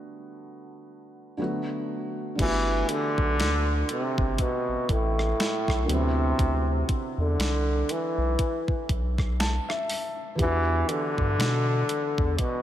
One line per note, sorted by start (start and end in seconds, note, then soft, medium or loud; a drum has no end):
0.00 1.33 D3 medium
0.00 1.34 G3 medium
0.00 1.35 A3 medium
0.00 1.37 B3 medium
0.00 1.38 F#4 medium
1.37 2.34 D3 medium
1.37 2.39 F#3 medium
1.37 2.38 A3 medium
1.37 2.40 B3 medium
1.42 2.40 F#4 medium
2.35 2.83 G1 loud
2.35 5.83 D3 medium
2.35 5.84 G3 medium
2.35 kick loud
2.35 closed hi-hat medium
2.35 crash loud
2.40 2.92 E3 loud
2.40 5.85 A3 medium
2.40 5.86 B3 medium
2.44 5.88 F#4 medium
2.89 3.90 D3 loud
2.89 closed hi-hat medium
3.18 3.41 B1 medium
3.18 kick loud
3.39 3.83 D2 loud
3.39 snare loud
3.39 closed hi-hat medium
3.89 4.42 C3 loud
3.89 closed hi-hat medium
4.18 4.37 G1 medium
4.18 kick loud
4.38 4.92 B2 loud
4.38 kick medium
4.38 closed hi-hat medium
4.68 4.77 A1 soft
4.89 5.33 A1 loud
4.89 5.92 A2 loud
4.89 kick loud
4.89 closed hi-hat medium
5.19 cross-stick medium
5.40 snare loud
5.40 closed hi-hat medium
5.68 5.87 B1 medium
5.68 kick medium
5.68 cross-stick medium
5.85 6.33 D2 loud
5.85 9.83 D3 medium
5.85 9.84 F#3 medium
5.89 6.88 C3 loud
5.89 9.85 B3 medium
5.89 9.86 C4 medium
5.89 closed hi-hat medium
5.94 9.88 E4 medium
6.39 6.83 D2 loud
6.39 kick loud
6.39 closed hi-hat medium
6.89 kick medium
6.89 closed hi-hat medium
7.18 7.37 E2 loud
7.18 7.92 D3 loud
7.39 7.83 C2 loud
7.39 snare loud
7.39 closed hi-hat medium
7.89 8.90 E3 loud
7.89 closed hi-hat medium
8.18 8.36 B1 medium
8.39 kick medium
8.39 closed hi-hat medium
8.68 8.77 B1 soft
8.68 kick loud
8.89 9.59 B1 loud
8.89 kick loud
8.89 closed hi-hat medium
9.18 kick loud
9.18 cross-stick medium
9.40 9.66 A5 medium
9.40 snare loud
9.40 closed hi-hat medium
9.69 10.35 E5 medium
9.69 cross-stick medium
9.90 open hi-hat medium
10.35 10.83 E2 loud
10.35 12.62 E3 medium
10.35 12.62 G4 medium
10.35 kick loud
10.35 closed hi-hat medium
10.40 10.92 E3 loud
10.40 12.62 B3 medium
10.40 12.62 D4 medium
10.44 12.62 F#4 medium
10.89 12.41 D3 loud
10.89 closed hi-hat medium
11.18 11.37 G2 medium
11.18 kick loud
11.39 11.83 B2 loud
11.39 snare loud
11.39 closed hi-hat medium
11.89 closed hi-hat medium
12.18 12.37 E2 medium
12.18 kick loud
12.39 12.62 B2 loud
12.39 kick medium
12.39 closed hi-hat medium